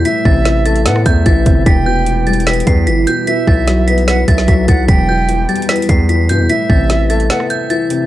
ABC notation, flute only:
X:1
M:4/4
L:1/8
Q:1/4=149
K:Em
V:1 name="Flute"
e4 f e3 | g4 z4 | e4 f e2 f | g4 z4 |
e4 f e3 |]